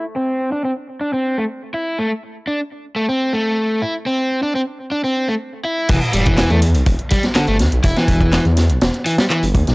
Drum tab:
CC |----------------|----------------|----------------|x---------------|
HH |----------------|----------------|----------------|xxxxxxxxxxxxxxxx|
CP |----------------|----------------|----------------|----x-------x---|
SD |----------------|----------------|----------------|----o------oo-o-|
BD |----------------|----------------|----------------|o--o----o-o-----|

CC |----------------|
HH |xxxxxxxxxxxxxxxx|
CP |----x-------x---|
SD |-o--o-o-o--o---o|
BD |o-oo----------o-|